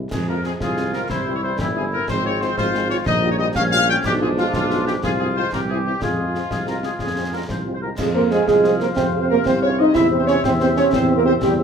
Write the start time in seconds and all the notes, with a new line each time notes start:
0.10 F2 F3 G#3 G#4, concert bass drum, snare, crash
0.28 G#3 C4 F4 A#4
0.44 G#3 C4 F4 G#4, snare
0.60 C2 F4 G#4, concert bass drum, snare
0.77 G#3 C4 F4, snare
0.93 G#3 C4 F4 A#4, snare
1.09 C2 E3 G3 E4 C5, concert bass drum, snare
1.26 G3 C4 E4
1.35 C#5
1.43 G3 C4 E4 C5
1.59 G1 E4 G4, concert bass drum, snare
1.76 G3 C4 E4 G#4
1.91 G3 C4 E4 A#4
2.08 G#1 F3 G#3 C4 C5, concert bass drum, snare
2.24 G#3 C4 F4 C#5
2.41 G#3 C4 F4 C5, snare
2.57 G#1 F4 C5, concert bass drum, snare
2.73 G#3 C4 F4, snare
2.89 G#3 C4 F4 C#5, snare
3.05 A#1 G3 D#4 D#5, concert bass drum, snare
3.22 G3 C#4 F4
3.31 C#5
3.39 G3 C#4 F4 D#5
3.55 A#1 C#4 F5, concert bass drum, snare
3.72 G3 C#4 F4 F5
3.89 G3 C#4 F4 G5
4.02 B1 F3 G#3 D4 G4, concert bass drum, snare, crash
4.21 G#3 D4 F4 G#4
4.37 G#3 D4 F4, snare
4.53 B1 F4, concert bass drum, snare
4.70 G#3 D4 F4, snare
4.87 G#3 D4 F4 G4, snare
5.03 C2 F4 G#4, concert bass drum, snare
5.19 G#3 C4 F4 G#4
5.37 G#3 C4 F4 C5
5.52 C2 E3 G3 G4 A#4, concert bass drum, snare
5.69 G3 C4 E4 G#4
5.85 G3 C4 E4 G4
6.02 F2 F3 G#3 F4 G#4, concert bass drum, snare
6.18 G#3 C4 F4
6.33 G#3 C4 F4, snare
6.50 C2 G#4, concert bass drum, snare
6.67 G#3 C4 F4 A#4, snare
6.83 G#3 C4 F4 G#4, snare
6.99 F2 G#4, concert bass drum, snare
7.17 G#3 C4 F4
7.33 G#3 C4 F4 A#4
7.49 C2 C5, concert bass drum, snare
7.65 G#3 C4 F4
7.74 C5
7.82 G#3 C4 F4 A#4
7.98 F2 G#3 G#4 C5 F5, concert bass drum, snare, crash
8.13 A#3 F4 G#4 A#4 C5
8.31 G#3 F4 G#4 C5, snare
8.46 C2 F3 G#3 G#4, concert bass drum, snare
8.64 F4 G#4 C5, snare
8.79 A#3 F4 G#4 A#4 C5, snare
8.96 F2 C3 C4 C5, concert bass drum, snare
9.14 F4 G#4 C5
9.21 C4 C5
9.29 A#3 F4 G#4 A#4 C5
9.46 C2 C4 C5, concert bass drum, snare
9.62 C#4 F4 G#4 C5 C#5
9.78 D#4 F4 G#4 C5 D#5
9.94 E2 E4 C5 E5, concert bass drum, snare
10.11 G4 C5
10.19 C4 C5
10.27 C#4 G4 C5 C#5, snare
10.43 E2 C4 C5, concert bass drum, snare
10.60 C4 G4 C5, snare
10.76 C#4 G4 C5 C#5, snare
10.92 E2 C4 C5, concert bass drum, snare
11.09 G4 C5
11.17 A#3 A#4
11.25 C4 G4 C5
11.41 E2 G3 G4, concert bass drum, snare
11.59 G4 C5